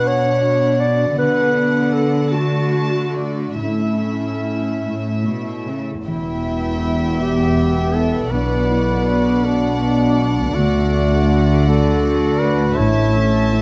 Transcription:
Already playing: cello section B2, harp B2 B3 D4 F#4 B4, viola section D4, violin section F#5
0.06 clarinet C#5, harp F#5
0.42 harp F#4
0.79 harp D4, clarinet D5
1.16 harp D3, cello section D3, viola section B3 D4, clarinet B4, violin section F#5
1.54 harp D4
1.93 harp F#4, clarinet A4
2.32 viola section A3 F#4, clarinet F#4, harp D5, violin section A5
2.73 harp F#4, violin section A5
3.15 harp D4, violin section D5
3.58 harp A2, cello section A2, viola section A3 E4, clarinet C#4, violin section E5
4.01 harp C#4
4.43 harp E4
4.84 cello section A2, harp C#5
5.25 cello section B2, harp E4
5.66 cello section C#3, harp C#4
6.06 double bass section E1, cello section E2, harp E3, viola section B3, duduk E4, violin section E5 G5
6.45 harp E4
6.83 harp G4
7.20 clarinet B3, duduk G4, harp E5
7.58 harp G4
7.95 harp E4, duduk A4
8.31 double bass section B1, cello section B2, harp B2, clarinet D4, duduk B4, violin section D5 F#5
8.70 harp B3, clarinet E4
9.08 harp D4, clarinet D4
9.45 clarinet B3, duduk D4, harp B4
9.81 harp D4
10.19 harp B3
10.55 double bass section D2, harp D3, cello section D3, viola section A3, clarinet A3, duduk F#4
10.93 harp D4
11.30 harp F#4
11.68 clarinet F#4, duduk A4, harp D5
12.05 harp F#4
12.40 harp D4, duduk B4
12.77 double bass section A1, cello section A2, harp A2, clarinet E4, duduk C#5, violin section E5 A5
13.16 harp A3, clarinet C#4
13.52 clarinet A3, harp E4

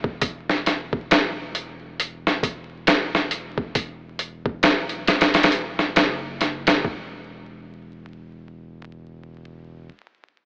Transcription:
Already playing: sub bass E1
0.04 kick
0.21 sub bass E1, kick, closed hi-hat
0.49 snare
0.66 snare, closed hi-hat
0.93 kick
1.11 snare, closed hi-hat
1.55 closed hi-hat
2.00 closed hi-hat
2.27 snare
2.43 kick, closed hi-hat
2.87 snare, closed hi-hat
3.15 snare
3.31 closed hi-hat
3.58 kick
3.75 sub bass E1, kick, closed hi-hat
4.19 closed hi-hat
4.46 kick
4.63 snare, closed hi-hat
4.89 closed hi-hat
5.07 snare, closed hi-hat
5.21 snare, closed hi-hat
5.34 snare, closed hi-hat
5.43 snare, closed hi-hat
5.52 closed hi-hat
5.79 snare
5.96 sub bass F#1, snare, closed hi-hat
6.41 snare, closed hi-hat
6.67 snare, closed hi-hat
6.85 sub bass E1, kick

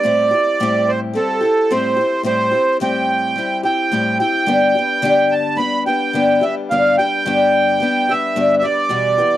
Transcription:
Already playing: accordion D5
0.03 steel-string acoustic guitar A2 G3 C4 E4 G4
0.31 steel-string acoustic guitar E4 G4
0.36 steel-string acoustic guitar C4
0.60 steel-string acoustic guitar A2 G3 C4 E4 G4
0.88 accordion C5
1.13 steel-string acoustic guitar G3 C4 E4 G4, accordion A4
1.41 steel-string acoustic guitar E4 G4
1.45 steel-string acoustic guitar C4
1.71 steel-string acoustic guitar A2 G3 C4 E4 G4, accordion C5
1.97 steel-string acoustic guitar E4 G4
2.01 steel-string acoustic guitar C4
2.23 steel-string acoustic guitar A2 G3 C4 E4 G4, accordion C5
2.52 steel-string acoustic guitar C4 E4 G4
2.80 steel-string acoustic guitar A2 G3 C4 E4 G4, accordion G5
3.36 steel-string acoustic guitar G3 C4 E4 G4
3.63 steel-string acoustic guitar C4 E4 G4, accordion G5
3.92 steel-string acoustic guitar A2 G3 C4 E4 G4
4.19 steel-string acoustic guitar E4 G4, accordion G5
4.24 steel-string acoustic guitar C4
4.46 steel-string acoustic guitar G2 D3 G3 B3 D4 G4
4.75 steel-string acoustic guitar G3 B3 D4 G4
5.02 steel-string acoustic guitar G2 D3 G3 B3 D4 G4
5.32 accordion A5
5.57 steel-string acoustic guitar G3 B3 D4, accordion B5
5.61 steel-string acoustic guitar G4
5.86 steel-string acoustic guitar G3 B3 D4 G4, accordion G5
6.13 steel-string acoustic guitar G2 D3 G3 B3 D4 G4
6.41 steel-string acoustic guitar G3 B3 D4 G4, accordion E5
6.70 steel-string acoustic guitar G2 D3 G3 B3 D4 G4, accordion F5
6.98 steel-string acoustic guitar B3 D4 G4, accordion G5
7.03 steel-string acoustic guitar G3
7.25 steel-string acoustic guitar G2 D3 G3 B3 D4 G4
7.80 steel-string acoustic guitar G3 B3 D4 G4
8.09 steel-string acoustic guitar G3 B3 D4 G4, accordion E5
8.36 steel-string acoustic guitar G2 D3 G3 B3 D4 G4
8.59 steel-string acoustic guitar D4 G4, accordion D5 E5
8.65 steel-string acoustic guitar G3 B3
8.89 steel-string acoustic guitar E2 B2 E3 G3 B3 G4
9.18 steel-string acoustic guitar E3 G3 B3 G4

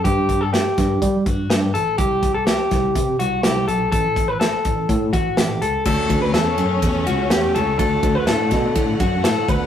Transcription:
0.04 tine electric piano G2, clean electric guitar G4, kick, closed hi-hat
0.29 kick, closed hi-hat
0.41 clean electric guitar A4
0.53 clean electric guitar G4, snare, closed hi-hat
0.78 tine electric piano G2, kick, snare, closed hi-hat
1.02 tine electric piano G3, kick, closed hi-hat
1.26 tine electric piano G2, clean electric guitar F#4, kick, closed hi-hat
1.50 tine electric piano G2, clean electric guitar G4, snare, closed hi-hat
1.74 tine electric piano A1, clean electric guitar A4, closed hi-hat
1.98 tine electric piano C2, clean electric guitar G4, kick, closed hi-hat
2.23 kick, closed hi-hat
2.34 clean electric guitar A4
2.47 clean electric guitar G4, snare, closed hi-hat
2.71 tine electric piano C2, kick, snare, closed hi-hat
2.95 tine electric piano C3, kick, closed hi-hat
3.19 tine electric piano C2, clean electric guitar F#4, closed hi-hat
3.43 tine electric piano C2, clean electric guitar G4, snare, closed hi-hat
3.68 tine electric piano B1, clean electric guitar A4, closed hi-hat
3.92 tine electric piano A1, clean electric guitar A4, kick, closed hi-hat
4.16 kick, closed hi-hat
4.28 clean electric guitar B4
4.40 clean electric guitar A4, snare, closed hi-hat
4.65 tine electric piano A1, kick, closed hi-hat
4.89 tine electric piano A2, kick, closed hi-hat
5.13 tine electric piano A1, clean electric guitar F#4, kick, closed hi-hat
5.37 tine electric piano A1, clean electric guitar G4, snare, closed hi-hat
5.62 tine electric piano C#2, clean electric guitar A4, closed hi-hat
5.85 tine electric piano D2, string section B2 A3 C#4, clean electric guitar A4, kick, crash
6.10 tine electric piano D2, kick, ride
6.22 clean electric guitar B4
6.34 tine electric piano E2, clean electric guitar A4, snare, ride
6.58 tine electric piano F#2, ride
6.82 tine electric piano E2, kick, ride
7.07 tine electric piano C#2, clean electric guitar F#4, ride
7.30 tine electric piano E2, clean electric guitar G4, snare, ride
7.55 tine electric piano C#2, clean electric guitar A4, ride
7.78 tine electric piano D2, string section D3 F#5, clean electric guitar A4, kick, ride
8.03 tine electric piano D2, kick, ride
8.15 clean electric guitar B4
8.27 tine electric piano A2, clean electric guitar A4, snare, ride
8.51 tine electric piano B2, kick, snare, ride
8.76 tine electric piano A2, kick, ride
9.00 tine electric piano F#2, clean electric guitar F#4, kick, ride
9.24 tine electric piano A2, clean electric guitar A4, snare, ride
9.48 tine electric piano D2, string section D3 B3, clean electric guitar B4, kick, ride

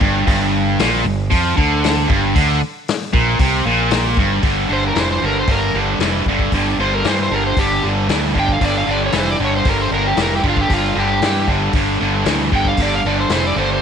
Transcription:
0.01 fingered electric bass G1, distorted electric guitar G2, kick
0.26 fingered electric bass G1, distorted electric guitar G2, kick, open hi-hat
0.79 fingered electric bass A#1, distorted electric guitar A#2, snare, open hi-hat
1.04 fingered electric bass G1, distorted electric guitar G2
1.30 fingered electric bass F2, distorted electric guitar F3, kick, open hi-hat
1.57 fingered electric bass D2, distorted electric guitar D3, kick
1.84 snare, open hi-hat
2.08 fingered electric bass G1, distorted electric guitar G2, kick
2.35 fingered electric bass D2, distorted electric guitar D3, kick, open hi-hat
2.88 snare, open hi-hat
3.13 fingered electric bass A#1, distorted electric guitar A#2, kick
3.39 fingered electric bass C2, distorted electric guitar C3, kick, open hi-hat
3.65 fingered electric bass A#1, distorted electric guitar A#2
3.91 snare, open hi-hat
4.16 fingered electric bass G1, distorted electric guitar G2, kick
4.42 fingered electric bass G1, distorted electric guitar G2 D3, kick, open hi-hat
4.68 fingered electric bass G1, distorted electric guitar G2 D3
4.73 electric slide guitar C5
4.87 electric slide guitar A#4
4.95 fingered electric bass F1, distorted electric guitar G2 E3, snare, open hi-hat
5.00 electric slide guitar C5
5.12 electric slide guitar C5
5.22 fingered electric bass G1, distorted electric guitar G2 D3, electric slide guitar A#4
5.39 electric slide guitar C5
5.47 fingered electric bass G1, distorted electric guitar G2 D3, electric slide guitar A#4, kick, open hi-hat
5.74 fingered electric bass G1, distorted electric guitar G2 D3
5.99 fingered electric bass F1, distorted electric guitar G2 E3, snare, open hi-hat
6.26 fingered electric bass G1, distorted electric guitar G2 D3, kick
6.39 kick
6.52 fingered electric bass G1, distorted electric guitar G2 D3, kick, open hi-hat
6.78 fingered electric bass G1, distorted electric guitar G2 D3, electric slide guitar C5
6.94 electric slide guitar A#4
7.04 distorted electric guitar G2 E3, fingered electric bass G2, electric slide guitar C5, snare, open hi-hat
7.23 electric slide guitar C5
7.30 fingered electric bass G1, distorted electric guitar G2 D3
7.34 electric slide guitar A#4
7.47 electric slide guitar C5
7.57 fingered electric bass G1, distorted electric guitar G2 D3, electric slide guitar G4, kick, open hi-hat
7.83 fingered electric bass G1, distorted electric guitar G2 D3
8.08 fingered electric bass D2, distorted electric guitar G2 E3, snare, open hi-hat
8.34 fingered electric bass G1, distorted electric guitar G2 D3, kick
8.39 electric slide guitar G5
8.48 electric slide guitar F5, kick
8.60 fingered electric bass G1, distorted electric guitar G2 D3, kick, open hi-hat
8.65 electric slide guitar D5
8.78 electric slide guitar F5
8.86 fingered electric bass G1, distorted electric guitar G2 D3
8.91 electric slide guitar D5
9.06 electric slide guitar C#5
9.12 fingered electric bass F1, distorted electric guitar G2 E3, snare, open hi-hat
9.19 electric slide guitar C5
9.30 electric slide guitar D5
9.39 fingered electric bass G1, distorted electric guitar G2 D3
9.44 electric slide guitar C#5
9.56 electric slide guitar C5
9.65 fingered electric bass G1, distorted electric guitar G2 D3, kick, open hi-hat
9.69 electric slide guitar A#4
9.81 electric slide guitar C5
9.91 fingered electric bass G1, distorted electric guitar G2 D3, electric slide guitar A#4
10.07 electric slide guitar G4
10.17 fingered electric bass F1, distorted electric guitar G2 E3, electric slide guitar A#4, snare, open hi-hat
10.36 electric slide guitar G4
10.44 fingered electric bass G1, distorted electric guitar G2 D3, kick
10.49 electric slide guitar F4
10.57 kick
10.61 electric slide guitar G4
10.69 fingered electric bass G1, distorted electric guitar G2 D3, kick, open hi-hat
10.73 electric slide guitar F4
10.95 fingered electric bass G1, distorted electric guitar G2 D3
11.00 electric slide guitar G4
11.22 fingered electric bass G2, distorted electric guitar G2 E3, snare, open hi-hat
11.47 fingered electric bass G1, distorted electric guitar G2 D3, kick
11.73 fingered electric bass G1, distorted electric guitar G2 D3, kick, open hi-hat
12.01 fingered electric bass G1, distorted electric guitar G2 D3
12.25 fingered electric bass D2, distorted electric guitar G2 E3, snare, open hi-hat
12.51 fingered electric bass G1, distorted electric guitar G2 D3, kick
12.55 electric slide guitar G5
12.65 electric slide guitar F5, kick
12.77 fingered electric bass G1, distorted electric guitar G2 D3, kick, open hi-hat
12.82 electric slide guitar D5
12.95 electric slide guitar F5
13.04 fingered electric bass G1, distorted electric guitar G2 D3, electric slide guitar D5
13.20 electric slide guitar C5
13.29 fingered electric bass F1, distorted electric guitar G2 E3, electric slide guitar C5, snare, open hi-hat
13.47 electric slide guitar D5
13.56 fingered electric bass G1, distorted electric guitar G2 D3, electric slide guitar C5
13.73 electric slide guitar C5

